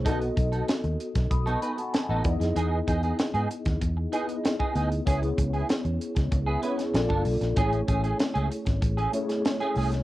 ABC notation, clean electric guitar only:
X:1
M:4/4
L:1/16
Q:1/4=96
K:E
V:1 name="Clean electric guitar"
[B,DA] z2 [B,DA] z4 z [B,DA] [B,DB] z2 [B,DA] z2 | [B,DG] z [B,DG] [B,DG] z [B,DG] z4 [B,DG] z2 [B,DG] [B,DG] z | [B,EG] z2 [B,EG] z4 z [B,EG] [B,EB] z2 [=D^EA] z2 | [A,CG] z [A,CG] [A,CG] z [A,CG] z3 [A,CG] z3 [A,CG] [A,CG] z |]